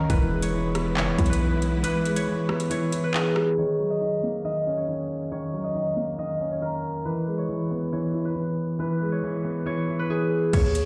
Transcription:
0.00 0.12 D#3 medium
0.00 0.11 F#3 medium
0.00 0.12 A#3 medium
0.00 0.12 C#4 medium
0.00 0.16 A#4 medium
0.00 0.42 C#5 medium
0.00 1.01 D#5 medium
0.10 0.98 E1 loud
0.10 0.52 E3 loud
0.10 3.54 G#3 medium
0.10 3.54 B3 medium
0.10 3.54 E4 medium
0.10 1.29 B4 loud
0.10 3.54 B4 loud
0.10 kick loud
0.10 closed hi-hat medium
0.31 1.40 G#3 medium
0.42 0.96 C#5 medium
0.42 closed hi-hat medium
0.53 0.96 E3 medium
0.75 1.84 B3 medium
0.75 cross-stick loud
0.75 closed hi-hat medium
0.97 1.09 F#1 loud
0.97 1.39 E3 medium
0.97 2.16 C#5 medium
0.97 clap loud
1.08 1.18 E1 loud
1.18 1.84 B1 loud
1.18 2.27 E4 medium
1.18 kick medium
1.18 closed hi-hat medium
1.26 1.84 B4 medium
1.26 closed hi-hat medium
1.33 closed hi-hat loud
1.40 1.82 E3 medium
1.62 closed hi-hat medium
1.83 2.26 E3 loud
1.83 3.03 B4 loud
1.83 closed hi-hat medium
2.06 3.14 G#3 medium
2.06 closed hi-hat medium
2.16 2.70 C#5 medium
2.16 closed hi-hat medium
2.27 2.69 E3 medium
2.49 3.58 B3 medium
2.49 cross-stick loud
2.60 closed hi-hat medium
2.70 3.12 E3 loud
2.70 3.57 C#5 medium
2.70 closed hi-hat medium
2.92 3.58 E4 medium
2.92 closed hi-hat loud
3.04 5.09 B4 medium
3.14 3.57 E3 medium
3.14 5.42 G#4 medium
3.14 clap loud
3.36 cross-stick loud
3.58 4.00 D#3 medium
3.58 4.77 C#5 medium
3.79 4.88 F#3 medium
3.90 4.44 D#5 medium
4.01 4.43 D#3 medium
4.23 5.32 A#3 medium
4.45 4.87 D#3 medium
4.45 5.64 D#5 medium
4.66 5.75 C#4 medium
4.77 5.31 C#5 medium
4.88 5.30 D#3 medium
5.32 5.74 D#3 medium
5.32 6.51 C#5 loud
5.54 6.62 F#3 medium
5.64 6.18 D#5 medium
5.75 6.17 D#3 medium
5.97 7.05 A#3 medium
6.19 6.61 D#3 medium
6.19 7.97 D#5 medium
6.40 7.05 C#4 medium
6.51 7.37 C#5 medium
6.62 7.06 D#3 medium
6.62 7.11 A#4 medium
7.05 7.47 E3 medium
7.05 8.25 B4 medium
7.27 8.36 G#3 medium
7.38 7.92 C#5 medium
7.49 7.91 E3 medium
7.71 8.79 B3 medium
7.92 8.34 E3 medium
7.92 9.11 C#5 medium
8.14 9.23 E4 medium
8.25 8.79 B4 medium
8.36 8.77 E3 medium
8.79 9.21 E3 loud
8.79 9.99 B4 loud
9.02 10.10 G#3 medium
9.12 9.66 C#5 medium
9.23 9.64 E3 medium
9.44 10.53 B3 medium
9.66 10.08 E3 medium
9.66 10.53 C#5 medium
9.88 10.53 E4 medium
9.99 10.85 B4 medium
10.09 10.53 E3 medium
10.09 10.85 G#4 medium
10.53 10.85 D#2 loud
10.53 10.85 C#5 loud
10.53 kick loud
10.53 closed hi-hat medium
10.53 crash loud
10.75 closed hi-hat medium

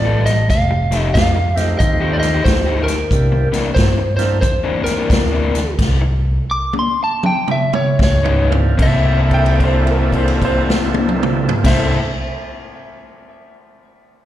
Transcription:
0.00 0.48 A1 loud
0.00 0.25 D5 medium
0.05 0.30 G3 medium
0.05 0.30 B3 medium
0.05 0.30 F4 medium
0.05 0.30 A4 medium
0.26 0.50 D#5 medium
0.26 snare soft
0.26 closed hi-hat medium
0.50 1.13 F1 medium
0.50 1.01 F5 medium
0.50 kick medium
0.50 snare soft
0.50 closed hi-hat medium
0.71 muted overdriven electric guitar stroke soft
0.92 1.07 F3 medium
0.92 1.07 A3 medium
0.92 1.07 D#4 medium
0.92 1.07 G4 medium
0.92 snare soft
0.92 closed hi-hat medium
1.01 1.13 D#5 medium
1.14 1.79 F2 medium
1.14 1.61 F5 medium
1.14 muted overdriven electric guitar stroke soft
1.14 kick medium
1.14 snare loud
1.14 closed hi-hat medium
1.36 muted overdriven electric guitar stroke soft
1.56 2.40 A3 medium
1.56 2.41 C4 medium
1.56 2.41 D#4 medium
1.56 2.41 F4 medium
1.56 2.41 G4 medium
1.56 snare soft
1.56 closed hi-hat medium
1.61 1.76 D#5 medium
1.79 2.44 D#2 medium
1.79 2.13 D#5 medium
1.79 muted overdriven electric guitar stroke soft
1.79 kick medium
1.79 closed hi-hat medium
2.01 2.26 F3 medium
2.01 2.26 A3 medium
2.01 2.26 D#4 medium
2.01 2.26 G4 medium
2.13 2.19 D5 medium
2.20 2.43 D#5 medium
2.20 closed hi-hat medium
2.24 snare soft
2.34 2.53 F3 medium
2.34 2.52 A3 medium
2.34 2.52 D#4 medium
2.34 2.52 G4 medium
2.44 3.09 D2 medium
2.44 2.83 C5 medium
2.44 kick medium
2.44 snare loud
2.44 closed hi-hat medium
2.67 2.92 F3 medium
2.67 2.92 A3 medium
2.67 2.91 D#4 medium
2.67 2.91 G4 medium
2.84 3.70 A#4 medium
2.88 snare soft
2.88 closed hi-hat medium
3.11 3.50 C2 medium
3.11 3.49 A#3 medium
3.11 3.49 C4 soft
3.11 3.49 D4 soft
3.11 3.49 E4 soft
3.11 3.50 G4 medium
3.11 kick medium
3.11 closed hi-hat medium
3.32 muted overdriven electric guitar stroke soft
3.52 3.68 C3 medium
3.52 3.68 E3 medium
3.52 3.68 A#3 medium
3.52 3.68 D4 medium
3.52 muted upright bass stroke soft
3.52 snare soft
3.52 closed hi-hat medium
3.75 4.41 G2 medium
3.75 4.15 C5 medium
3.75 muted overdriven electric guitar stroke soft
3.75 kick medium
3.75 snare loud
3.75 closed hi-hat medium
3.98 muted overdriven electric guitar stroke soft
4.17 4.40 A#3 medium
4.17 4.40 C4 medium
4.17 4.40 D4 medium
4.17 4.40 E4 medium
4.17 4.41 A#4 medium
4.17 4.40 C5 medium
4.17 snare soft
4.17 closed hi-hat medium
4.41 4.82 E2 medium
4.41 4.84 C5 medium
4.41 muted overdriven electric guitar stroke soft
4.41 kick medium
4.41 closed hi-hat medium
4.64 4.90 C3 medium
4.64 4.90 E3 medium
4.64 4.89 A#3 medium
4.64 4.89 D4 medium
4.84 5.74 A#4 medium
4.84 muted upright bass stroke soft
4.84 closed hi-hat medium
4.88 snare soft
4.97 5.17 C3 medium
4.97 5.17 E3 medium
4.97 5.17 A#3 medium
4.97 5.16 D4 medium
5.10 5.77 D2 loud
5.10 kick medium
5.10 snare loud
5.10 closed hi-hat medium
5.32 5.58 C3 medium
5.32 5.58 E3 medium
5.32 5.58 A#3 medium
5.32 5.58 D4 medium
5.55 snare soft
5.55 closed hi-hat medium
5.79 6.37 C2 medium
5.79 kick medium
5.79 snare medium
5.79 crash medium
6.01 muted overdriven electric guitar stroke soft
6.51 6.74 D6 loud
6.73 high tom medium
6.79 7.00 C6 medium
7.04 7.25 A5 medium
7.23 7.49 G5 medium
7.23 mid tom medium
7.48 7.74 E5 medium
7.48 mid tom medium
7.73 7.99 C#5 medium
7.73 mid tom medium
7.99 8.76 C#2 medium
7.99 kick medium
7.99 snare medium
7.99 floor tom medium
8.04 8.51 C#5 medium
8.23 8.54 C#3 medium
8.23 8.54 F3 medium
8.23 8.54 B3 medium
8.23 8.54 D#4 medium
8.23 floor tom medium
8.49 8.71 A#3 medium
8.49 8.74 C4 medium
8.49 8.76 D4 medium
8.49 8.76 E4 medium
8.49 8.76 A#4 medium
8.49 floor tom medium
8.72 11.49 A#3 medium
8.72 11.50 C4 medium
8.78 11.48 C2 medium
8.78 11.63 C3 medium
8.78 11.65 A#3 medium
8.78 11.52 D4 medium
8.78 11.66 E4 loud
8.78 11.54 E4 medium
8.78 kick medium
8.78 crash medium
8.82 11.67 A4 medium
8.82 11.55 A4 medium
8.82 11.50 E5 medium
9.31 9.60 G5 medium
9.31 kick soft
9.31 crash soft
9.46 crash soft
9.60 9.88 C5 medium
9.60 kick medium
9.60 crash soft
9.87 10.15 A#4 medium
9.87 crash soft
10.13 10.42 C5 medium
10.13 kick medium
10.13 crash soft
10.28 crash soft
10.42 11.51 C5 medium
10.42 kick medium
10.42 crash soft
10.70 snare medium
10.94 high tom loud
11.09 mid tom medium
11.23 mid tom loud
11.49 floor tom loud
11.58 11.92 A#3 medium
11.58 11.94 C4 medium
11.63 11.94 C2 medium
11.63 11.95 C3 loud
11.63 11.96 A#3 loud
11.63 11.95 D4 medium
11.63 11.96 E4 loud
11.63 11.97 E4 medium
11.63 11.96 C5 medium
11.63 11.94 E5 medium
11.63 kick loud
11.63 snare medium
11.63 crash loud
11.68 11.97 A4 loud
11.68 11.98 A4 medium

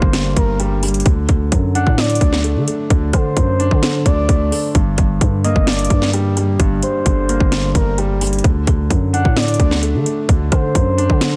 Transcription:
0.00 0.35 G1 loud
0.00 0.13 G2 loud
0.00 0.83 D3 medium
0.00 0.60 G3 medium
0.00 1.07 A#3 loud
0.00 0.33 C5 medium
0.00 kick medium
0.13 0.35 G2 medium
0.13 snare loud
0.13 closed hi-hat medium
0.37 1.03 G1 loud
0.37 1.06 G2 medium
0.37 0.59 A#4 medium
0.37 kick loud
0.37 closed hi-hat medium
0.60 0.82 G3 medium
0.60 closed hi-hat medium
0.83 1.06 G3 medium
0.83 closed hi-hat medium
0.83 open hi-hat medium
0.88 closed hi-hat medium
0.94 closed hi-hat medium
1.00 closed hi-hat medium
1.06 1.28 D2 loud
1.06 1.28 D3 medium
1.06 kick loud
1.06 closed hi-hat medium
1.29 1.51 D2 loud
1.29 1.97 D3 medium
1.29 kick loud
1.29 closed hi-hat medium
1.52 1.85 F#2 loud
1.52 2.68 F#3 medium
1.52 kick loud
1.52 closed hi-hat medium
1.75 2.90 D4 loud
1.75 1.97 F#5 medium
1.75 closed hi-hat medium
1.87 2.20 A2 loud
1.87 kick medium
1.98 2.20 D3 medium
1.98 2.42 D5 medium
1.98 snare loud
1.98 closed hi-hat soft
2.04 closed hi-hat medium
2.10 closed hi-hat medium
2.15 closed hi-hat medium
2.21 2.57 D2 loud
2.21 2.89 D3 medium
2.21 kick loud
2.21 closed hi-hat medium
2.33 snare medium
2.44 2.66 A3 loud
2.44 closed hi-hat medium
2.56 2.67 D3 loud
2.67 3.83 A3 medium
2.67 closed hi-hat medium
2.90 3.13 D2 loud
2.90 3.12 D3 medium
2.90 kick loud
2.90 closed hi-hat medium
3.13 3.81 D3 medium
3.13 3.36 D3 loud
3.13 4.02 C5 medium
3.13 kick loud
3.13 cross-stick medium
3.13 closed hi-hat medium
3.37 3.70 F#2 loud
3.37 4.52 F#3 medium
3.37 kick loud
3.37 closed hi-hat medium
3.60 4.75 D4 loud
3.60 closed hi-hat medium
3.71 4.04 D3 loud
3.71 kick medium
3.83 4.04 D3 medium
3.83 snare loud
3.83 closed hi-hat medium
4.06 4.28 D2 loud
4.06 4.75 D3 medium
4.06 4.71 D5 medium
4.06 kick loud
4.06 closed hi-hat medium
4.29 4.51 D2 loud
4.29 4.50 A3 medium
4.29 kick loud
4.29 closed hi-hat medium
4.52 4.75 A3 medium
4.52 open hi-hat medium
4.75 4.97 G1 loud
4.75 4.96 G2 medium
4.75 kick loud
4.75 closed hi-hat medium
4.98 5.20 G1 loud
4.98 5.66 G2 medium
4.98 kick loud
4.98 closed hi-hat medium
5.21 5.54 G2 loud
5.21 6.37 D3 medium
5.21 kick loud
5.21 closed hi-hat medium
5.44 6.60 A#3 loud
5.44 5.66 D#5 medium
5.44 closed hi-hat medium
5.56 5.89 G1 loud
5.56 kick medium
5.67 5.89 G2 medium
5.67 6.11 D5 loud
5.67 snare loud
5.67 closed hi-hat soft
5.73 closed hi-hat medium
5.79 closed hi-hat medium
5.85 closed hi-hat medium
5.90 6.57 G2 loud
5.90 6.58 G2 medium
5.90 kick loud
5.90 closed hi-hat medium
6.02 snare medium
6.13 6.35 G3 loud
6.13 closed hi-hat medium
6.37 7.52 G3 medium
6.37 closed hi-hat medium
6.60 6.82 G1 loud
6.60 6.81 G2 loud
6.60 kick loud
6.60 closed hi-hat medium
6.83 7.50 G2 medium
6.83 7.71 C5 medium
6.83 closed hi-hat medium
7.06 7.39 G1 loud
7.06 8.21 D3 medium
7.06 kick loud
7.06 closed hi-hat medium
7.29 8.44 A#3 medium
7.29 closed hi-hat medium
7.40 7.74 G1 loud
7.40 kick medium
7.52 7.74 G2 medium
7.52 snare loud
7.52 closed hi-hat medium
7.75 8.41 G1 loud
7.75 8.44 G2 medium
7.75 7.97 A#4 medium
7.75 kick loud
7.75 closed hi-hat medium
7.98 8.20 G3 medium
7.98 closed hi-hat medium
8.21 8.44 G3 medium
8.21 closed hi-hat medium
8.21 open hi-hat medium
8.27 closed hi-hat medium
8.33 closed hi-hat medium
8.39 closed hi-hat medium
8.44 8.66 D2 loud
8.44 8.66 D3 medium
8.44 kick loud
8.44 closed hi-hat medium
8.67 8.90 D2 loud
8.67 9.36 D3 medium
8.67 kick loud
8.67 closed hi-hat medium
8.90 9.24 F#2 loud
8.90 10.06 F#3 medium
8.90 kick loud
8.90 closed hi-hat medium
9.13 10.29 D4 medium
9.13 9.35 F#5 medium
9.13 closed hi-hat medium
9.25 9.58 A2 loud
9.25 kick medium
9.36 9.58 D3 medium
9.36 9.80 D5 medium
9.36 snare loud
9.36 closed hi-hat soft
9.42 closed hi-hat medium
9.48 closed hi-hat medium
9.54 closed hi-hat medium
9.60 9.96 D2 loud
9.60 10.27 D3 medium
9.60 kick loud
9.60 closed hi-hat medium
9.71 snare medium
9.83 10.04 A3 medium
9.83 closed hi-hat medium
9.94 10.05 D3 loud
10.06 11.21 A3 medium
10.06 closed hi-hat medium
10.29 10.51 D2 loud
10.29 10.50 D3 medium
10.29 kick loud
10.29 closed hi-hat medium
10.52 11.20 D3 medium
10.52 10.74 D3 loud
10.52 11.36 C5 medium
10.52 kick loud
10.52 cross-stick medium
10.52 closed hi-hat medium
10.75 11.08 F#2 loud
10.75 11.36 F#3 medium
10.75 kick loud
10.75 closed hi-hat medium
10.98 11.36 D4 loud
10.98 closed hi-hat medium
11.10 11.36 D3 loud
11.10 kick medium
11.21 11.36 D3 medium
11.21 snare loud
11.21 closed hi-hat medium

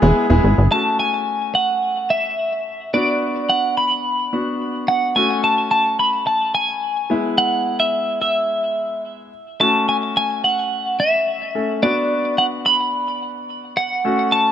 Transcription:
0.02 0.13 E1 loud
0.02 0.25 G#3 medium
0.02 0.25 B3 medium
0.02 0.25 E4 medium
0.02 0.25 G#4 loud
0.30 0.40 E1 medium
0.30 0.64 G#3 medium
0.30 0.64 B3 medium
0.30 0.64 E4 medium
0.30 0.64 G#4 loud
0.44 0.54 G#1 medium
0.58 0.68 G1 medium
0.71 2.90 A3 medium
0.71 2.90 C#4 medium
0.71 2.90 F#4 medium
0.71 0.99 A5 medium
1.00 1.55 G#5 medium
1.55 2.12 F#5 medium
2.10 2.90 E5 medium
2.93 4.30 B3 medium
2.93 4.30 D4 medium
2.93 4.30 F#4 medium
2.93 3.51 D5 medium
3.49 3.77 F#5 medium
3.77 4.92 B5 loud
4.33 5.16 B3 soft
4.33 5.16 D4 soft
4.33 5.15 F#4 medium
4.88 5.14 F#5 medium
5.16 7.07 A3 medium
5.16 7.07 C#4 medium
5.16 7.07 F#4 medium
5.16 5.43 G#5 loud
5.44 5.70 A5 medium
5.71 5.99 A5 medium
5.99 6.26 B5 medium
6.27 6.53 A5 medium
6.55 7.34 G#5 medium
7.10 9.29 G#3 medium
7.10 9.29 B3 medium
7.10 9.29 E4 medium
7.38 7.77 F#5 loud
7.80 8.19 E5 medium
8.22 9.01 E5 medium
9.60 11.51 A3 medium
9.60 11.51 C#4 medium
9.60 11.51 F#4 medium
9.60 9.87 A5 medium
9.89 9.96 G#5 medium
10.17 10.44 G#5 medium
10.44 10.96 F#5 medium
11.00 11.82 E5 medium
11.55 11.83 A3 soft
11.55 11.83 C#4 soft
11.55 11.83 A4 medium
11.82 14.01 B3 medium
11.82 14.01 D4 medium
11.82 14.01 F#4 medium
11.82 12.35 D5 medium
12.38 12.46 F#5 loud
12.66 13.81 B5 loud
13.77 14.34 F#5 medium
14.04 14.52 A3 medium
14.04 14.52 C#4 medium
14.04 14.52 F#4 medium
14.32 14.52 A5 medium

